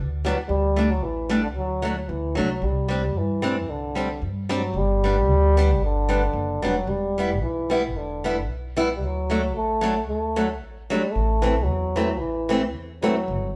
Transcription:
Already playing: D2
0.25 F#3 G3 B3 D4
0.48 D2 G3
0.76 G3 A3 D4
0.91 F#3
1.02 A1 E3
1.29 G3 A3 D4
1.43 D3
1.54 D2 F#3
1.82 F#3 A3 D4
2.02 F#3
2.09 D2 E3
2.35 C2 F#3 A3 D4
2.62 C2 G3
2.88 G3 C4 D4
3.15 G2 E3
3.42 G3 C4 D4
3.69 C2 D3
3.95 G3 C4 D4
4.22 G2
4.49 G3 C4 D4
4.55 F#3
4.74 G1 G3
5.04 G3 B3 D4
5.28 D2
5.57 G3 B3 D4
5.80 G1
5.85 D3
6.09 G3 B3 D4
6.33 F#1
6.62 E1 F#3 G3 B3 D4
6.87 E1 G3
7.18 G3 B3 E4
7.42 B1 E3
7.70 G3 B3 E4
7.89 E3
7.94 E1 D3
8.24 G3 B3 E4
8.48 B1
8.77 G3 B3 E4
8.82 E3
8.96 G3
9.02 D2 F#3
9.30 F#3 A3 D4
9.55 A1 A3
9.81 F#3 A3 D4
10.08 D2 A3
10.36 F#3 A3 D4
10.61 A1
10.90 F#3 G3 A3 D4
11.11 A1 A3
11.42 E3 A3 C4
11.63 F#3
11.68 E2
11.96 E3 A3 C4
12.18 A1 E3
12.49 E3 A3 C4
12.74 E2
13.02 E3 F#3 A3 C4
13.28 G1

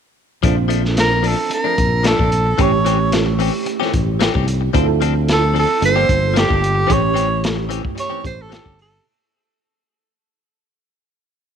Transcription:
0.43 A#1 F3 A3 C4 D4 F4, kick, closed hi-hat
0.57 muted clean electric guitar stroke
0.68 F3 A3 D4, closed hi-hat
0.83 muted clean electric guitar stroke, snare
0.97 A#4, snare, closed hi-hat
1.10 muted clean electric guitar stroke
1.23 F3 A3 D4, open hi-hat
1.27 A4
1.37 muted clean electric guitar stroke
1.50 muted clean electric guitar stroke, closed hi-hat
1.54 A#4
1.64 F3 A3 D4
1.77 A#1, muted clean electric guitar stroke, kick, closed hi-hat
2.03 F3 A3 D4, snare, closed hi-hat
2.08 A4
2.18 A#1 A3 D4, kick
2.31 muted clean electric guitar stroke, closed hi-hat
2.46 muted clean electric guitar stroke
2.58 A1 E3 A3 C4 C#4 E4 G4, kick, closed hi-hat
2.62 C#5
2.73 muted clean electric guitar stroke
2.85 E3 C4 C#4 G4, closed hi-hat
2.99 muted clean electric guitar stroke
3.12 snare, closed hi-hat
3.26 muted clean electric guitar stroke
3.39 E3 C4 C#4 G4, open hi-hat
3.53 muted clean electric guitar stroke
3.66 muted clean electric guitar stroke, closed hi-hat
3.80 E3 C4 C#4 G4, snare
3.93 A1, muted clean electric guitar stroke, kick, closed hi-hat
4.20 E3 C4 C#4 G4, snare, closed hi-hat
4.34 C2 C4 C#4 G4, kick
4.47 muted clean electric guitar stroke, closed hi-hat
4.61 muted clean electric guitar stroke
4.73 D2 F3 C4 D4 E4 F4 A4, kick, closed hi-hat
4.88 muted clean electric guitar stroke
5.01 F3 C4 D4 A4, closed hi-hat
5.15 muted clean electric guitar stroke
5.28 snare, closed hi-hat
5.33 A4
5.41 muted clean electric guitar stroke
5.54 F3 C4 D4 A4, open hi-hat
5.59 A4
5.69 muted clean electric guitar stroke
5.81 G1 A#3 D4 F4 A4, muted clean electric guitar stroke, closed hi-hat
5.85 C5
5.96 F3 A#3 D4 G4
6.09 G1, kick, closed hi-hat
6.34 F3 A#3 D4 G4, snare, closed hi-hat
6.39 G4
6.48 G1 A#3 D4 G4, kick
6.61 muted clean electric guitar stroke, closed hi-hat
6.75 muted clean electric guitar stroke
6.87 A1 E3 A3 C4 C#4 E4 G4, kick, closed hi-hat
6.91 G4 C#5
7.02 muted clean electric guitar stroke
7.14 E3 C4 C#4 G4, closed hi-hat
7.29 muted clean electric guitar stroke
7.44 snare, closed hi-hat
7.56 muted clean electric guitar stroke
7.69 E3 C4 C#4 G4, closed hi-hat
7.83 muted clean electric guitar stroke, kick
7.95 muted clean electric guitar stroke, closed hi-hat
8.00 C#5
8.10 E3 C4 C#4 G4
8.23 A1 C4 C#4 E4 G4 C5, muted clean electric guitar stroke, kick, closed hi-hat
8.42 A4
8.49 E3 C4 C#4 G4, snare, closed hi-hat
8.54 A4
8.64 G1 C4 C#4 G4, kick
8.76 muted clean electric guitar stroke, open hi-hat
8.82 A4
8.91 muted clean electric guitar stroke

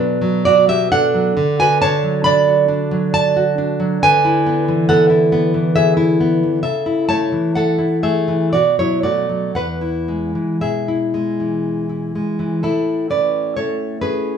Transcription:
Already playing: B2 F#3 B3 B4
0.00 D4
0.22 F#3
0.45 F#4 D5
0.68 B3 G4 E5
0.92 D4 A4 F#5
1.14 F#3
1.37 D3
1.59 F#4 B4 G#5
1.82 D4 C#5 A5
2.03 F#3
2.24 D4 D5 B5
2.48 F#4
2.68 D4
2.91 F#3
3.14 D5 A5
3.37 F#4
3.58 D4
3.80 F#3
4.03 D3 B4 G#5
4.25 E4
4.46 B3
4.68 E3
4.89 B3 A4 F#5
5.10 E4
5.32 B3
5.54 E3
5.76 G#4 E5
5.97 E4
6.20 B3
6.43 E3
6.63 C#3 A4 E5
6.86 E4
7.09 A3 C#5 A5
7.32 E3
7.55 A3 A4 F#5
7.79 E4
8.03 A3 G#4 E5
8.28 E3
8.53 B2 F#4 D5
8.79 F#3 E4 C#5
9.03 A3 F#4 D5
9.29 F#3
9.55 E2 B4 F#5
9.81 E4
10.08 G#3
10.35 E3
10.61 B2 G#4 E5
10.88 E4
11.14 G#3
11.40 E3
11.89 E4
12.16 G#3
12.39 E3
12.63 A2 E4 A4
13.10 C#4 B4 D5
13.57 A3 A4 C#5
14.01 C#4 G#4 B4

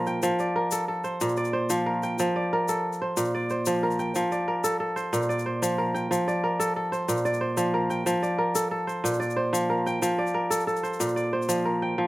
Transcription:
Already playing: A#2 F3 A#4 C5 D5
0.06 G5, shaker
0.22 F3, shaker
0.39 D5, shaker
0.56 A#4
0.71 A4, shaker
0.88 A4
1.04 C5, shaker
1.21 A#2, shaker
1.29 shaker
1.36 D5, shaker
1.45 shaker
1.53 C5
1.70 F3, shaker
1.86 A#4
2.03 G5, shaker
2.19 F3, shaker
2.36 D5
2.53 A#4
2.68 A4, shaker
2.93 shaker
3.02 C5
3.17 A#2, shaker
3.25 shaker
3.35 D5
3.50 C5, shaker
3.66 F3, shaker
3.83 A#4
3.91 shaker
3.99 G5, shaker
4.15 F3, shaker
4.32 D5, shaker
4.48 A#4
4.64 A4, shaker
4.80 A4
4.96 C5, shaker
5.13 A#2, shaker
5.22 shaker
5.29 D5, shaker
5.39 shaker
5.46 C5
5.62 F3, shaker
5.78 A#4
5.94 G5, shaker
6.11 F3, shaker
6.28 D5, shaker
6.44 A#4
6.60 A4, shaker
6.76 A4
6.92 C5, shaker
7.08 A#2, shaker
7.17 shaker
7.25 D5, shaker
7.33 shaker
7.41 C5
7.57 F3, shaker
7.74 A#4
7.90 G5, shaker
8.06 F3, shaker
8.22 D5, shaker
8.38 A#4
8.55 A4, shaker
8.71 A4
8.87 C5, shaker
9.04 A#2, shaker
9.13 shaker
9.20 D5, shaker
9.30 shaker
9.36 C5
9.53 F3, shaker
9.70 A#4
9.86 G5, shaker
10.02 F3, shaker
10.18 D5
10.27 shaker
10.34 A#4
10.50 A4, shaker
10.60 shaker
10.67 A4, shaker
10.76 shaker
10.83 C5, shaker
10.93 shaker
11.00 A#2, shaker
11.08 shaker
11.16 D5, shaker
11.33 C5
11.42 shaker
11.49 F3, shaker
11.65 A#4
11.82 G5
11.98 F3

